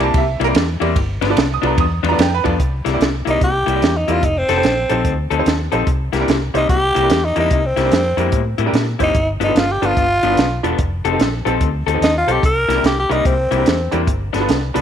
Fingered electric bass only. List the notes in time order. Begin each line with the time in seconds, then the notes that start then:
0.00 C2
0.14 C2
0.40 C2
0.55 E2
0.81 E2
0.96 G1
1.21 G1
1.37 C2
1.63 C2
1.78 E2
2.03 E2
2.18 F2
2.45 F2
2.60 C2
2.86 C2
3.00 C2
3.27 C2
3.41 C2
3.67 C2
3.82 E2
4.08 E2
4.23 F1
4.49 F1
4.64 A#1
4.90 A#1
5.04 D2
5.31 D2
5.46 D#2
5.73 A#1
5.87 C2
6.13 C2
6.28 C2
6.54 C2
6.69 C2
6.96 C2
7.10 E2
7.37 E2
7.51 C2
7.77 C2
7.92 F2
8.17 F2
8.33 A2
8.58 A2
8.73 A#2
9.00 F#1
9.14 G1
9.40 G1
9.55 G1
9.82 G1
9.97 G1
10.23 G1
10.38 B1
10.64 E1
10.79 F1
11.05 F1
11.19 A#1
11.46 A#1
11.61 D2
11.87 D2
12.01 D#2
12.27 B1
12.43 C2
12.68 C2
12.83 C2
13.10 C2
13.25 C2
13.51 C2
13.66 E2
13.93 E2
14.07 G1
14.34 G1
14.49 C2
14.75 C2